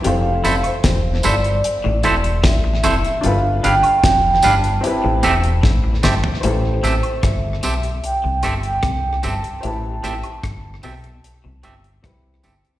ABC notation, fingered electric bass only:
X:1
M:4/4
L:1/16
Q:1/4=75
K:Am
V:1 name="Fingered electric bass" clef=bass
F,,,2 F,,, z E,,,2 G,,,2 z A,,, E,,,2 A,,,2 F,,, z | G,,,2 G,,, z F,,,2 G,,,2 z A,,, E,,,2 A,,,2 G,,, z | A,,,2 A,,, z G,,,2 B,,,2 z C,, G,,,2 C,,2 G,,, z | A,,,2 A,,, z G,,,2 B,,,2 z C,, G,,,2 C,,2 G,,, z |]